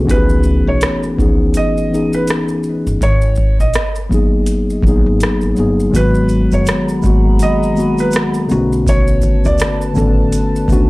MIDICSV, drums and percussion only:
0, 0, Header, 1, 2, 480
1, 0, Start_track
1, 0, Key_signature, 5, "minor"
1, 0, Tempo, 731707
1, 56, Time_signature, 4, 2, 24, 8
1, 7150, End_track
2, 0, Start_track
2, 0, Title_t, "Drums"
2, 57, Note_on_c, 9, 36, 104
2, 62, Note_on_c, 9, 42, 61
2, 62, Note_on_c, 9, 82, 57
2, 122, Note_off_c, 9, 36, 0
2, 128, Note_off_c, 9, 42, 0
2, 128, Note_off_c, 9, 82, 0
2, 192, Note_on_c, 9, 82, 47
2, 258, Note_off_c, 9, 82, 0
2, 284, Note_on_c, 9, 82, 44
2, 349, Note_off_c, 9, 82, 0
2, 532, Note_on_c, 9, 42, 67
2, 532, Note_on_c, 9, 82, 68
2, 544, Note_on_c, 9, 37, 114
2, 597, Note_off_c, 9, 42, 0
2, 597, Note_off_c, 9, 82, 0
2, 609, Note_off_c, 9, 37, 0
2, 676, Note_on_c, 9, 82, 44
2, 741, Note_off_c, 9, 82, 0
2, 778, Note_on_c, 9, 36, 100
2, 786, Note_on_c, 9, 82, 45
2, 843, Note_off_c, 9, 36, 0
2, 851, Note_off_c, 9, 82, 0
2, 1011, Note_on_c, 9, 42, 71
2, 1011, Note_on_c, 9, 82, 70
2, 1076, Note_off_c, 9, 42, 0
2, 1076, Note_off_c, 9, 82, 0
2, 1164, Note_on_c, 9, 82, 39
2, 1230, Note_off_c, 9, 82, 0
2, 1274, Note_on_c, 9, 82, 42
2, 1339, Note_off_c, 9, 82, 0
2, 1396, Note_on_c, 9, 82, 55
2, 1462, Note_off_c, 9, 82, 0
2, 1492, Note_on_c, 9, 42, 68
2, 1492, Note_on_c, 9, 82, 74
2, 1511, Note_on_c, 9, 37, 96
2, 1558, Note_off_c, 9, 42, 0
2, 1558, Note_off_c, 9, 82, 0
2, 1577, Note_off_c, 9, 37, 0
2, 1629, Note_on_c, 9, 82, 43
2, 1695, Note_off_c, 9, 82, 0
2, 1727, Note_on_c, 9, 82, 39
2, 1793, Note_off_c, 9, 82, 0
2, 1882, Note_on_c, 9, 82, 49
2, 1947, Note_off_c, 9, 82, 0
2, 1975, Note_on_c, 9, 36, 97
2, 1980, Note_on_c, 9, 42, 62
2, 1980, Note_on_c, 9, 82, 66
2, 2041, Note_off_c, 9, 36, 0
2, 2045, Note_off_c, 9, 42, 0
2, 2045, Note_off_c, 9, 82, 0
2, 2109, Note_on_c, 9, 82, 46
2, 2174, Note_off_c, 9, 82, 0
2, 2200, Note_on_c, 9, 82, 44
2, 2215, Note_on_c, 9, 36, 85
2, 2266, Note_off_c, 9, 82, 0
2, 2281, Note_off_c, 9, 36, 0
2, 2363, Note_on_c, 9, 82, 52
2, 2428, Note_off_c, 9, 82, 0
2, 2451, Note_on_c, 9, 42, 67
2, 2451, Note_on_c, 9, 82, 65
2, 2463, Note_on_c, 9, 37, 100
2, 2517, Note_off_c, 9, 42, 0
2, 2517, Note_off_c, 9, 82, 0
2, 2528, Note_off_c, 9, 37, 0
2, 2593, Note_on_c, 9, 82, 46
2, 2659, Note_off_c, 9, 82, 0
2, 2696, Note_on_c, 9, 36, 93
2, 2703, Note_on_c, 9, 82, 43
2, 2762, Note_off_c, 9, 36, 0
2, 2769, Note_off_c, 9, 82, 0
2, 2928, Note_on_c, 9, 42, 71
2, 2928, Note_on_c, 9, 82, 71
2, 2994, Note_off_c, 9, 42, 0
2, 2994, Note_off_c, 9, 82, 0
2, 3083, Note_on_c, 9, 82, 41
2, 3149, Note_off_c, 9, 82, 0
2, 3165, Note_on_c, 9, 36, 102
2, 3193, Note_on_c, 9, 82, 45
2, 3231, Note_off_c, 9, 36, 0
2, 3258, Note_off_c, 9, 82, 0
2, 3414, Note_on_c, 9, 42, 70
2, 3414, Note_on_c, 9, 82, 72
2, 3433, Note_on_c, 9, 37, 92
2, 3479, Note_off_c, 9, 42, 0
2, 3479, Note_off_c, 9, 82, 0
2, 3498, Note_off_c, 9, 37, 0
2, 3550, Note_on_c, 9, 82, 39
2, 3616, Note_off_c, 9, 82, 0
2, 3649, Note_on_c, 9, 82, 39
2, 3714, Note_off_c, 9, 82, 0
2, 3802, Note_on_c, 9, 82, 47
2, 3868, Note_off_c, 9, 82, 0
2, 3895, Note_on_c, 9, 36, 95
2, 3901, Note_on_c, 9, 42, 65
2, 3901, Note_on_c, 9, 82, 65
2, 3902, Note_off_c, 9, 82, 0
2, 3902, Note_on_c, 9, 82, 77
2, 3961, Note_off_c, 9, 36, 0
2, 3967, Note_off_c, 9, 42, 0
2, 3967, Note_off_c, 9, 82, 0
2, 4031, Note_on_c, 9, 82, 44
2, 4097, Note_off_c, 9, 82, 0
2, 4123, Note_on_c, 9, 82, 45
2, 4127, Note_off_c, 9, 82, 0
2, 4127, Note_on_c, 9, 82, 39
2, 4192, Note_off_c, 9, 82, 0
2, 4276, Note_on_c, 9, 82, 54
2, 4341, Note_off_c, 9, 82, 0
2, 4365, Note_on_c, 9, 82, 59
2, 4374, Note_off_c, 9, 82, 0
2, 4374, Note_on_c, 9, 42, 72
2, 4374, Note_on_c, 9, 82, 68
2, 4386, Note_on_c, 9, 37, 98
2, 4440, Note_off_c, 9, 42, 0
2, 4440, Note_off_c, 9, 82, 0
2, 4452, Note_off_c, 9, 37, 0
2, 4516, Note_on_c, 9, 82, 45
2, 4582, Note_off_c, 9, 82, 0
2, 4608, Note_on_c, 9, 82, 49
2, 4617, Note_on_c, 9, 36, 99
2, 4627, Note_off_c, 9, 82, 0
2, 4627, Note_on_c, 9, 82, 45
2, 4683, Note_off_c, 9, 36, 0
2, 4692, Note_off_c, 9, 82, 0
2, 4850, Note_on_c, 9, 42, 70
2, 4850, Note_on_c, 9, 82, 72
2, 4859, Note_off_c, 9, 82, 0
2, 4859, Note_on_c, 9, 82, 73
2, 4916, Note_off_c, 9, 42, 0
2, 4925, Note_off_c, 9, 82, 0
2, 5005, Note_on_c, 9, 82, 44
2, 5071, Note_off_c, 9, 82, 0
2, 5093, Note_on_c, 9, 82, 51
2, 5115, Note_off_c, 9, 82, 0
2, 5115, Note_on_c, 9, 82, 44
2, 5181, Note_off_c, 9, 82, 0
2, 5236, Note_on_c, 9, 82, 45
2, 5238, Note_off_c, 9, 82, 0
2, 5238, Note_on_c, 9, 82, 58
2, 5304, Note_off_c, 9, 82, 0
2, 5322, Note_on_c, 9, 82, 66
2, 5334, Note_off_c, 9, 82, 0
2, 5334, Note_on_c, 9, 42, 73
2, 5334, Note_on_c, 9, 82, 78
2, 5353, Note_on_c, 9, 37, 109
2, 5399, Note_off_c, 9, 42, 0
2, 5399, Note_off_c, 9, 82, 0
2, 5418, Note_off_c, 9, 37, 0
2, 5471, Note_on_c, 9, 82, 42
2, 5536, Note_off_c, 9, 82, 0
2, 5570, Note_on_c, 9, 82, 41
2, 5579, Note_off_c, 9, 82, 0
2, 5579, Note_on_c, 9, 82, 50
2, 5644, Note_off_c, 9, 82, 0
2, 5723, Note_on_c, 9, 82, 51
2, 5789, Note_off_c, 9, 82, 0
2, 5816, Note_on_c, 9, 36, 103
2, 5820, Note_on_c, 9, 82, 72
2, 5822, Note_off_c, 9, 82, 0
2, 5822, Note_on_c, 9, 42, 63
2, 5822, Note_on_c, 9, 82, 69
2, 5882, Note_off_c, 9, 36, 0
2, 5888, Note_off_c, 9, 42, 0
2, 5888, Note_off_c, 9, 82, 0
2, 5953, Note_on_c, 9, 82, 50
2, 6018, Note_off_c, 9, 82, 0
2, 6046, Note_on_c, 9, 82, 46
2, 6047, Note_off_c, 9, 82, 0
2, 6047, Note_on_c, 9, 82, 46
2, 6057, Note_on_c, 9, 36, 88
2, 6113, Note_off_c, 9, 82, 0
2, 6123, Note_off_c, 9, 36, 0
2, 6198, Note_on_c, 9, 82, 53
2, 6263, Note_off_c, 9, 82, 0
2, 6285, Note_on_c, 9, 82, 62
2, 6296, Note_off_c, 9, 82, 0
2, 6296, Note_on_c, 9, 42, 69
2, 6296, Note_on_c, 9, 82, 72
2, 6308, Note_on_c, 9, 37, 106
2, 6361, Note_off_c, 9, 42, 0
2, 6361, Note_off_c, 9, 82, 0
2, 6373, Note_off_c, 9, 37, 0
2, 6438, Note_on_c, 9, 82, 48
2, 6504, Note_off_c, 9, 82, 0
2, 6528, Note_on_c, 9, 82, 49
2, 6538, Note_on_c, 9, 36, 99
2, 6547, Note_off_c, 9, 82, 0
2, 6547, Note_on_c, 9, 82, 47
2, 6603, Note_off_c, 9, 36, 0
2, 6612, Note_off_c, 9, 82, 0
2, 6773, Note_on_c, 9, 42, 75
2, 6773, Note_on_c, 9, 82, 75
2, 6780, Note_off_c, 9, 82, 0
2, 6780, Note_on_c, 9, 82, 79
2, 6838, Note_off_c, 9, 42, 0
2, 6845, Note_off_c, 9, 82, 0
2, 6926, Note_on_c, 9, 82, 43
2, 6992, Note_off_c, 9, 82, 0
2, 7006, Note_on_c, 9, 36, 98
2, 7013, Note_on_c, 9, 82, 53
2, 7034, Note_off_c, 9, 82, 0
2, 7034, Note_on_c, 9, 82, 47
2, 7072, Note_off_c, 9, 36, 0
2, 7100, Note_off_c, 9, 82, 0
2, 7150, End_track
0, 0, End_of_file